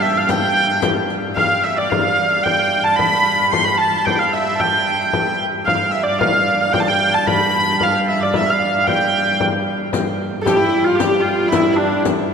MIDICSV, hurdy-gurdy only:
0, 0, Header, 1, 2, 480
1, 0, Start_track
1, 0, Tempo, 538117
1, 263, Time_signature, 2, 2, 24, 8
1, 5542, Tempo, 530035
1, 11089, End_track
2, 0, Start_track
2, 0, Title_t, "Hurdy-gurdy"
2, 0, Program_c, 0, 110
2, 22, Note_on_c, 0, 76, 74
2, 154, Note_off_c, 0, 76, 0
2, 154, Note_on_c, 0, 77, 73
2, 266, Note_off_c, 0, 77, 0
2, 266, Note_on_c, 0, 79, 89
2, 747, Note_off_c, 0, 79, 0
2, 1210, Note_on_c, 0, 77, 84
2, 1464, Note_off_c, 0, 77, 0
2, 1464, Note_on_c, 0, 76, 69
2, 1590, Note_off_c, 0, 76, 0
2, 1590, Note_on_c, 0, 74, 73
2, 1695, Note_on_c, 0, 77, 77
2, 1702, Note_off_c, 0, 74, 0
2, 2059, Note_off_c, 0, 77, 0
2, 2059, Note_on_c, 0, 77, 78
2, 2173, Note_on_c, 0, 79, 91
2, 2176, Note_off_c, 0, 77, 0
2, 2534, Note_on_c, 0, 81, 89
2, 2543, Note_off_c, 0, 79, 0
2, 2642, Note_on_c, 0, 83, 101
2, 2663, Note_off_c, 0, 81, 0
2, 3142, Note_off_c, 0, 83, 0
2, 3142, Note_on_c, 0, 84, 103
2, 3252, Note_on_c, 0, 83, 87
2, 3267, Note_off_c, 0, 84, 0
2, 3369, Note_on_c, 0, 81, 93
2, 3372, Note_off_c, 0, 83, 0
2, 3617, Note_off_c, 0, 81, 0
2, 3617, Note_on_c, 0, 79, 89
2, 3738, Note_off_c, 0, 79, 0
2, 3738, Note_on_c, 0, 77, 87
2, 3864, Note_off_c, 0, 77, 0
2, 3864, Note_on_c, 0, 76, 85
2, 4104, Note_off_c, 0, 76, 0
2, 4104, Note_on_c, 0, 79, 87
2, 4823, Note_off_c, 0, 79, 0
2, 5049, Note_on_c, 0, 77, 91
2, 5275, Note_on_c, 0, 76, 75
2, 5278, Note_off_c, 0, 77, 0
2, 5383, Note_on_c, 0, 74, 79
2, 5399, Note_off_c, 0, 76, 0
2, 5521, Note_on_c, 0, 77, 93
2, 5522, Note_off_c, 0, 74, 0
2, 5895, Note_off_c, 0, 77, 0
2, 5895, Note_on_c, 0, 77, 83
2, 6010, Note_on_c, 0, 79, 94
2, 6012, Note_off_c, 0, 77, 0
2, 6074, Note_on_c, 0, 81, 80
2, 6077, Note_off_c, 0, 79, 0
2, 6149, Note_off_c, 0, 81, 0
2, 6149, Note_on_c, 0, 79, 101
2, 6387, Note_on_c, 0, 81, 90
2, 6390, Note_off_c, 0, 79, 0
2, 6507, Note_on_c, 0, 83, 106
2, 6508, Note_off_c, 0, 81, 0
2, 7009, Note_off_c, 0, 83, 0
2, 7009, Note_on_c, 0, 77, 90
2, 7113, Note_off_c, 0, 77, 0
2, 7242, Note_on_c, 0, 76, 85
2, 7368, Note_off_c, 0, 76, 0
2, 7368, Note_on_c, 0, 74, 80
2, 7487, Note_off_c, 0, 74, 0
2, 7487, Note_on_c, 0, 76, 92
2, 7614, Note_off_c, 0, 76, 0
2, 7614, Note_on_c, 0, 77, 76
2, 7727, Note_off_c, 0, 77, 0
2, 7727, Note_on_c, 0, 77, 78
2, 7950, Note_off_c, 0, 77, 0
2, 7950, Note_on_c, 0, 79, 90
2, 8432, Note_off_c, 0, 79, 0
2, 9349, Note_on_c, 0, 69, 79
2, 9374, Note_on_c, 0, 67, 103
2, 9386, Note_off_c, 0, 69, 0
2, 9486, Note_on_c, 0, 64, 99
2, 9503, Note_off_c, 0, 67, 0
2, 9732, Note_on_c, 0, 65, 89
2, 9738, Note_off_c, 0, 64, 0
2, 9830, Note_on_c, 0, 67, 106
2, 9861, Note_off_c, 0, 65, 0
2, 10065, Note_on_c, 0, 65, 97
2, 10090, Note_off_c, 0, 67, 0
2, 10309, Note_off_c, 0, 65, 0
2, 10309, Note_on_c, 0, 64, 88
2, 10532, Note_off_c, 0, 64, 0
2, 10532, Note_on_c, 0, 64, 57
2, 10567, Note_on_c, 0, 62, 74
2, 10589, Note_off_c, 0, 64, 0
2, 10816, Note_off_c, 0, 62, 0
2, 11089, End_track
0, 0, End_of_file